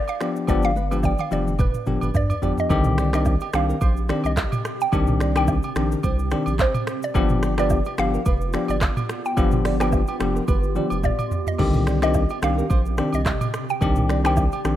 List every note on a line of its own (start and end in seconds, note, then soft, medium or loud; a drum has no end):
0.08 0.46 F5 loud
0.08 high agogo medium
0.08 shaker soft
0.20 0.46 F3 medium
0.20 0.46 B3 medium
0.20 0.46 D4 medium
0.20 0.47 G4 medium
0.20 0.30 D5 medium
0.20 finger snap medium
0.20 cross-stick medium
0.20 shaker medium
0.36 shaker medium
0.47 1.16 G1 loud
0.47 0.70 F3 medium
0.47 0.70 B3 medium
0.47 0.70 D4 medium
0.47 0.70 G4 loud
0.47 0.58 D5 medium
0.47 0.63 D5 loud
0.47 kick loud
0.47 high tom medium
0.47 high agogo medium
0.47 shaker medium
0.63 1.02 F5 loud
0.63 high tom soft
0.63 shaker soft
0.76 0.86 B4 medium
0.76 high tom medium
0.76 shaker soft
0.91 1.11 F3 medium
0.91 1.12 B3 medium
0.91 1.12 D4 medium
0.91 1.12 G4 medium
0.91 0.99 B4 medium
0.91 high tom medium
0.91 high agogo medium
0.91 shaker medium
1.03 1.21 D5 medium
1.03 1.19 G5 medium
1.03 kick medium
1.03 mid tom medium
1.03 low woodblock medium
1.03 shaker medium
1.18 1.31 F5 medium
1.18 mid tom medium
1.18 high agogo medium
1.18 shaker medium
1.31 1.71 F1 loud
1.31 1.53 F3 medium
1.31 1.53 B3 medium
1.31 1.53 D4 medium
1.31 1.53 G4 medium
1.31 1.61 D5 medium
1.31 mid tom medium
1.31 shaker medium
1.47 mid tom medium
1.47 shaker medium
1.59 1.69 B4 medium
1.59 2.12 B4 medium
1.59 kick loud
1.59 mid tom medium
1.59 high agogo medium
1.59 shaker medium
1.74 mid tom medium
1.74 shaker soft
1.86 1.98 G1 loud
1.86 2.08 F3 medium
1.86 2.09 B3 medium
1.86 2.09 D4 medium
1.86 2.09 G4 medium
1.86 1.97 A#4 medium
1.86 mid tom medium
1.86 shaker soft
2.01 2.11 G1 medium
2.01 2.10 B4 medium
2.01 mid tom medium
2.01 high agogo medium
2.01 shaker medium
2.14 2.34 G2 loud
2.14 2.56 D5 medium
2.14 kick medium
2.14 floor tom medium
2.14 low woodblock medium
2.14 shaker medium
2.30 floor tom medium
2.30 high agogo medium
2.30 shaker medium
2.42 2.53 G1 medium
2.42 2.68 F3 medium
2.42 2.68 B3 medium
2.42 2.68 D4 medium
2.42 2.68 G4 medium
2.42 2.52 D5 medium
2.42 floor tom loud
2.42 shaker medium
2.58 3.14 D#5 loud
2.58 floor tom medium
2.58 shaker medium
2.69 3.38 C2 loud
2.69 7.11 C3 medium
2.69 3.10 D3 medium
2.69 3.10 D#3 medium
2.69 7.11 C4 medium
2.69 3.10 C4 medium
2.69 14.76 G4 medium
2.69 3.10 G4 loud
2.69 2.80 D#5 medium
2.69 kick loud
2.69 high agogo medium
2.69 shaker medium
2.84 mid tom loud
2.84 shaker soft
2.98 3.14 D5 medium
2.98 finger snap medium
2.98 cross-stick medium
2.98 shaker medium
3.13 3.33 D#3 medium
3.13 3.33 C4 medium
3.13 3.34 D4 medium
3.13 3.34 G4 medium
3.13 3.21 C5 medium
3.13 3.56 D#5 loud
3.13 finger snap medium
3.13 cross-stick medium
3.13 high agogo medium
3.13 shaker medium
3.25 kick loud
3.25 low woodblock medium
3.25 shaker medium
3.40 3.49 G4 medium
3.40 high agogo medium
3.40 shaker medium
3.53 3.73 C2 loud
3.53 3.75 D#3 medium
3.53 3.75 C4 medium
3.53 3.75 D4 medium
3.53 3.75 G4 medium
3.53 4.21 F5 loud
3.53 finger snap medium
3.53 cross-stick loud
3.53 shaker medium
3.69 3.77 A#4 medium
3.69 shaker medium
3.81 4.12 A#1 loud
3.81 3.91 C5 medium
3.81 kick loud
3.81 high agogo medium
3.81 shaker medium
3.97 shaker soft
4.09 4.31 D#3 medium
4.09 4.31 C4 medium
4.09 4.31 D4 medium
4.09 4.31 G4 medium
4.09 4.19 D5 medium
4.09 finger snap medium
4.09 cross-stick medium
4.09 shaker soft
4.24 4.44 C2 medium
4.24 4.83 D#5 loud
4.24 high agogo medium
4.24 shaker medium
4.37 4.55 D#5 medium
4.37 finger snap medium
4.37 kick medium
4.37 cross-stick medium
4.37 clap medium
4.37 low woodblock medium
4.37 shaker medium
4.52 mid tom loud
4.52 high agogo medium
4.52 shaker medium
4.65 finger snap medium
4.65 cross-stick loud
4.65 shaker medium
4.81 5.33 G5 loud
4.81 shaker medium
4.92 5.60 C2 loud
4.92 5.32 D#3 medium
4.92 5.32 C4 medium
4.92 5.32 D4 medium
4.92 5.32 G4 loud
4.92 5.02 D#5 medium
4.92 kick loud
4.92 high agogo medium
4.92 shaker medium
5.07 mid tom loud
5.07 shaker soft
5.20 5.36 D5 medium
5.20 finger snap medium
5.20 cross-stick medium
5.20 shaker medium
5.35 5.56 D#3 medium
5.35 5.56 C4 medium
5.35 5.56 D4 medium
5.35 5.56 G4 medium
5.35 5.44 C5 medium
5.35 6.64 G5 loud
5.35 finger snap medium
5.35 cross-stick medium
5.35 high agogo medium
5.35 shaker medium
5.47 kick loud
5.47 low woodblock medium
5.47 shaker medium
5.63 5.72 G4 medium
5.63 high agogo medium
5.63 shaker medium
5.76 5.96 A#1 loud
5.76 5.98 D#3 medium
5.76 5.98 C4 medium
5.76 5.98 D4 medium
5.76 5.98 G4 medium
5.76 finger snap medium
5.76 cross-stick loud
5.76 shaker medium
5.92 5.99 A#4 medium
5.92 shaker medium
6.03 6.35 C2 loud
6.03 6.14 C5 loud
6.03 kick loud
6.03 high agogo medium
6.03 shaker medium
6.19 shaker medium
6.31 6.53 D#3 medium
6.31 6.53 C4 medium
6.31 6.53 D4 medium
6.31 6.53 G4 medium
6.31 6.41 D5 medium
6.31 finger snap medium
6.31 cross-stick medium
6.31 shaker soft
6.46 6.67 A#1 medium
6.46 high agogo medium
6.46 shaker medium
6.59 7.05 C5 medium
6.59 6.77 D#5 medium
6.59 finger snap medium
6.59 kick medium
6.59 cross-stick medium
6.59 clap medium
6.59 low woodblock medium
6.59 shaker medium
6.74 mid tom loud
6.74 high agogo medium
6.74 shaker soft
6.87 finger snap medium
6.87 cross-stick loud
6.87 shaker medium
7.03 7.55 D5 loud
7.03 shaker medium
7.14 7.82 G1 loud
7.14 7.54 F3 medium
7.14 7.54 B3 medium
7.14 11.55 B3 medium
7.14 7.54 D4 medium
7.14 11.55 F4 medium
7.14 7.54 G4 loud
7.14 7.25 F5 medium
7.14 kick loud
7.14 high agogo medium
7.14 shaker medium
7.29 mid tom loud
7.29 shaker soft
7.43 7.53 D5 medium
7.43 finger snap medium
7.43 cross-stick medium
7.43 shaker medium
7.58 7.78 F3 medium
7.58 7.78 B3 medium
7.58 7.78 D4 medium
7.58 7.78 G4 medium
7.58 7.66 B4 medium
7.58 7.96 D5 loud
7.58 finger snap medium
7.58 cross-stick medium
7.58 high agogo medium
7.58 shaker medium
7.70 kick loud
7.70 low woodblock medium
7.70 shaker medium
7.85 7.94 G4 medium
7.85 high agogo medium
7.85 shaker medium
7.98 8.18 G1 medium
7.98 8.20 F3 medium
7.98 8.20 B3 medium
7.98 8.20 D4 medium
7.98 8.20 G4 medium
7.98 8.66 F5 loud
7.98 finger snap medium
7.98 cross-stick medium
7.98 shaker medium
8.14 8.22 A#4 medium
8.14 shaker medium
8.26 8.57 F1 medium
8.26 8.36 B4 medium
8.26 kick loud
8.26 high agogo medium
8.26 shaker medium
8.41 shaker soft
8.53 8.75 F3 medium
8.53 8.75 B3 medium
8.53 8.75 D4 medium
8.53 8.76 G4 medium
8.53 8.64 D5 medium
8.53 finger snap medium
8.53 cross-stick medium
8.53 shaker soft
8.68 8.89 G1 medium
8.68 9.21 D5 loud
8.68 high agogo medium
8.68 shaker medium
8.81 8.99 F5 medium
8.81 finger snap medium
8.81 kick medium
8.81 cross-stick medium
8.81 clap medium
8.81 low woodblock medium
8.81 shaker medium
8.97 mid tom loud
8.97 high agogo medium
8.97 shaker medium
9.09 finger snap medium
9.09 cross-stick medium
9.09 shaker medium
9.25 9.80 G5 loud
9.25 shaker medium
9.37 10.05 G1 loud
9.37 9.76 F3 medium
9.37 9.77 B3 medium
9.37 9.77 D4 medium
9.37 9.77 G4 loud
9.37 9.47 F5 medium
9.37 kick loud
9.37 high agogo medium
9.37 shaker medium
9.51 mid tom loud
9.51 shaker soft
9.65 9.75 D5 medium
9.65 finger snap medium
9.65 cross-stick medium
9.65 open hi-hat medium
9.65 shaker medium
9.80 10.00 F3 medium
9.80 10.00 B3 medium
9.80 10.00 D4 medium
9.80 10.00 G4 medium
9.80 9.88 B4 medium
9.80 11.08 G5 loud
9.80 finger snap medium
9.80 cross-stick medium
9.80 high agogo medium
9.80 shaker medium
9.92 kick loud
9.92 low woodblock medium
9.92 shaker medium
10.07 10.16 G4 medium
10.07 high agogo medium
10.07 shaker medium
10.20 10.40 F1 loud
10.20 10.42 F3 medium
10.20 10.42 B3 medium
10.20 10.42 D4 medium
10.20 10.42 G4 medium
10.20 finger snap medium
10.20 cross-stick loud
10.20 shaker medium
10.36 10.44 A#4 medium
10.36 shaker medium
10.48 10.79 G1 loud
10.48 10.58 B4 medium
10.48 kick loud
10.48 high tom medium
10.48 high agogo medium
10.48 shaker medium
10.63 shaker soft
10.75 10.97 F3 medium
10.75 10.97 B3 medium
10.75 10.98 D4 medium
10.75 10.98 G4 medium
10.75 10.86 D5 medium
10.75 mid tom medium
10.75 shaker soft
10.90 11.11 F1 medium
10.90 high agogo medium
10.90 shaker medium
11.03 11.49 D5 medium
11.03 11.21 F5 medium
11.03 kick medium
11.03 mid tom medium
11.03 low woodblock medium
11.03 shaker medium
11.19 mid tom medium
11.19 high agogo medium
11.19 shaker medium
11.31 floor tom loud
11.31 shaker medium
11.47 12.02 D#5 loud
11.47 floor tom loud
11.47 shaker medium
11.58 12.27 C2 loud
11.58 14.76 C3 medium
11.58 11.99 D3 medium
11.58 11.98 D#3 medium
11.58 11.99 C4 medium
11.58 14.76 C4 medium
11.58 11.99 G4 loud
11.58 11.69 D#5 medium
11.58 kick loud
11.58 crash medium
11.58 high agogo medium
11.73 mid tom loud
11.73 shaker soft
11.87 12.02 D5 medium
11.87 finger snap medium
11.87 cross-stick medium
11.87 shaker medium
12.02 12.22 D#3 medium
12.02 12.22 C4 medium
12.02 12.22 D4 medium
12.02 12.23 G4 medium
12.02 12.10 C5 medium
12.02 12.44 D#5 loud
12.02 finger snap medium
12.02 cross-stick medium
12.02 high agogo medium
12.02 shaker medium
12.14 kick loud
12.14 low woodblock medium
12.14 shaker medium
12.29 12.38 G4 medium
12.29 high agogo medium
12.29 shaker medium
12.42 12.62 C2 loud
12.42 12.64 D#3 medium
12.42 12.64 C4 medium
12.42 12.64 D4 medium
12.42 12.64 G4 medium
12.42 13.16 F5 loud
12.42 finger snap medium
12.42 cross-stick loud
12.42 shaker medium
12.58 12.66 A#4 medium
12.58 shaker medium
12.70 13.01 A#1 loud
12.70 12.80 C5 medium
12.70 kick loud
12.70 high agogo medium
12.70 shaker medium
12.86 shaker soft
12.97 13.20 D#3 medium
12.97 13.20 C4 medium
12.97 13.20 D4 medium
12.97 13.20 G4 medium
12.97 13.08 D5 medium
12.97 finger snap medium
12.97 cross-stick medium
12.97 shaker soft
13.13 13.33 C2 medium
13.13 13.71 D#5 medium
13.13 high agogo medium
13.13 shaker medium
13.26 13.43 D#5 medium
13.26 finger snap medium
13.26 kick medium
13.26 cross-stick medium
13.26 clap medium
13.26 low woodblock medium
13.26 shaker medium
13.41 mid tom loud
13.41 high agogo medium
13.41 shaker medium
13.54 finger snap medium
13.54 cross-stick medium
13.54 shaker medium
13.69 14.21 G5 loud
13.69 shaker medium
13.81 14.49 C2 loud
13.81 14.21 D#3 medium
13.81 14.21 C4 medium
13.81 14.21 D4 medium
13.81 14.21 G4 loud
13.81 13.91 D#5 medium
13.81 kick loud
13.81 high agogo medium
13.81 shaker medium
13.96 mid tom loud
13.96 shaker soft
14.10 14.19 D5 medium
14.10 finger snap medium
14.10 cross-stick medium
14.10 shaker medium
14.24 14.45 D#3 medium
14.24 14.45 C4 medium
14.24 14.45 D4 medium
14.24 14.45 G4 medium
14.24 14.33 C5 medium
14.24 14.76 G5 loud
14.24 finger snap medium
14.24 cross-stick loud
14.24 high agogo medium
14.24 shaker medium
14.37 kick loud
14.37 low woodblock medium
14.37 shaker medium
14.52 14.61 G4 medium
14.52 high agogo medium
14.52 shaker medium
14.65 14.76 A#1 loud
14.65 14.76 D#3 medium
14.65 14.76 C4 medium
14.65 14.76 D4 medium
14.65 14.76 G4 medium
14.65 finger snap medium
14.65 cross-stick loud
14.65 shaker medium